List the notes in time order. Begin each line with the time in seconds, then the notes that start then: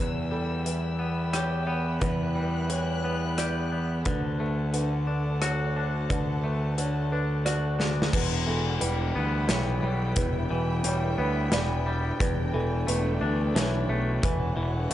Already playing: E2 E3 B4 E6
0.00 B4 E5 G5
0.31 G3 A4
0.65 E3 B4, closed hi-hat
0.99 B3
1.33 G4 C#5, cross-stick, closed hi-hat
1.67 B3
2.00 E2 B4 F#6, kick, closed hi-hat
2.35 G3
2.70 E3 C#5, closed hi-hat
3.04 B3 B4
3.38 G4 D5, cross-stick, closed hi-hat
3.72 B3
4.05 D2 D3 D4 A4 B4 F#5 A5, kick, closed hi-hat
4.40 A3 A4
4.74 D3 B4, closed hi-hat
5.07 D4
5.42 F#4 C#5, cross-stick, closed hi-hat
5.76 D4
6.09 D2 D3 B4, kick, closed hi-hat
6.44 A3
6.78 D3 C#5, closed hi-hat
7.12 D4 B4
7.45 F#4 D5, cross-stick, closed hi-hat
7.79 D4, snare
8.02 snare
8.13 E1 E2 E4 B4 F#5 G5, kick, crash
8.47 E1 E3 A4
8.81 E1 G3 B4, closed hi-hat
9.15 D2 B3
9.48 B1 E3 C#5, snare, closed hi-hat
9.82 B1 G3
10.16 E1 E2 B4 E5, kick, closed hi-hat
10.51 E1 E3
10.84 E1 G3 C#5, closed hi-hat
11.18 D2 B3 B4
11.51 E1 E3 D5, snare, closed hi-hat
11.86 G3
12.19 E1 E2 D4 A4 B4, kick, closed hi-hat
12.54 E1 E3 A4
12.87 E1 A3 B4, closed hi-hat
13.21 D2 D4
13.55 B1 E3 C#5, snare, closed hi-hat
13.89 B1 A3
14.22 E1 E3 A3 F#4 B4 C#5 F#5, kick, closed hi-hat
14.57 E1 E3
14.90 C#5